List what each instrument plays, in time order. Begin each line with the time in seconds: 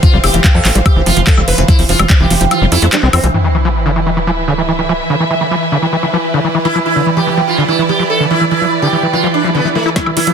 Already playing: ambient pad E3, string section C5 F5
0.03 acid bass F3, sitar F4, kick, closed hi-hat
0.13 analog synth bass F1, acid bass G3
0.24 analog synth bass F1, sitar G4, open hi-hat, high woodblock
0.34 analog synth bass F1, acid bass E3, closed hi-hat
0.44 acid bass F3, kick, clap, closed hi-hat
0.55 analog synth bass F2, acid bass F3, sitar A4
0.65 analog synth bass A1, acid bass F3, clap, open hi-hat
0.75 analog synth bass A1, acid bass G3, closed hi-hat
0.86 sitar G4, kick, closed hi-hat, high woodblock
0.96 analog synth bass F1, acid bass E3
1.06 analog synth bass F1, acid bass F3, sitar F4, open hi-hat
1.17 analog synth bass F1, acid bass F3, closed hi-hat
1.27 acid bass F3, sitar A4, kick, clap, closed hi-hat
1.37 analog synth bass F1, acid bass G3, high woodblock
1.48 analog synth bass F1, sitar B4, open hi-hat
1.58 analog synth bass F1, acid bass E3, closed hi-hat
1.68 acid bass F3, sitar E4, kick, closed hi-hat
1.79 analog synth bass F1, acid bass F3, open hi-hat
1.89 analog synth bass F1, acid bass F3, sitar F4, open hi-hat
1.99 analog synth bass F1, acid bass G3, closed hi-hat, high woodblock
2.10 kick, clap, closed hi-hat
2.20 analog synth bass F1, acid bass E3, sitar G4
2.30 analog synth bass F1, acid bass F3, open hi-hat
2.41 analog synth bass F1, acid bass F3, closed hi-hat
2.51 acid bass F3, sitar F4, closed hi-hat, high woodblock
2.62 analog synth bass F1, acid bass G3
2.72 analog synth bass F2, sitar E4, open hi-hat
2.82 analog synth bass F2, acid bass A3, closed hi-hat
2.93 acid bass G3, sitar D4, clap, closed hi-hat
3.03 analog synth bass C2, acid bass C4
3.13 analog synth bass F2, sitar C4, acid bass C4, open hi-hat, high woodblock
3.24 analog synth bass C2, acid bass F3, closed hi-hat
3.34 acid bass E3, ambient pad E3, string section E4, sub drop
3.44 acid bass E3
3.55 acid bass E3, string section B4
3.65 acid bass F3
3.86 acid bass D3
3.96 acid bass E3
4.06 acid bass E3
4.16 acid bass E3, string section E5
4.27 acid bass F3
4.48 acid bass D3
4.58 acid bass E3
4.68 acid bass E3
4.79 acid bass E3
4.89 acid bass F3
5.10 acid bass D3
5.20 acid bass E3
5.31 acid bass E3
5.41 acid bass E3
5.51 acid bass F3
5.72 acid bass D3
5.82 acid bass E3
5.93 acid bass E3
6.03 acid bass E3
6.13 acid bass F3
6.34 acid bass D3
6.44 acid bass E3
6.55 acid bass E3
6.65 acid bass E3, sitar E4
6.75 acid bass F3
6.86 sitar E4, string section D5
6.96 acid bass D3
7.06 acid bass E3
7.17 acid bass E3, sitar G4
7.27 acid bass E3
7.37 acid bass F3
7.48 sitar F4
7.58 acid bass D3
7.68 acid bass E3, sitar E4
7.79 acid bass E3
7.89 acid bass E3, sitar G4
7.99 acid bass F3
8.10 sitar A4
8.20 acid bass D3
8.31 acid bass E3, sitar E4
8.41 acid bass E3
8.51 acid bass E3, sitar E4
8.62 acid bass F3
8.82 acid bass D3, sitar G4
8.93 acid bass E3
9.03 acid bass E3
9.13 acid bass E3, sitar F4
9.24 acid bass F3
9.34 sitar D4
9.44 acid bass F3
9.55 acid bass D3, sitar B3
9.65 acid bass E3
9.75 acid bass E3, sitar A3
9.86 acid bass E4
9.96 acid bass E3, ambient pad E3, sitar E4, kick, snare, closed hi-hat, riser
10.06 analog synth bass E1, acid bass E3, high woodblock
10.17 analog synth bass E1, acid bass E3, sitar E4, open hi-hat
10.27 analog synth bass E1, acid bass F3, closed hi-hat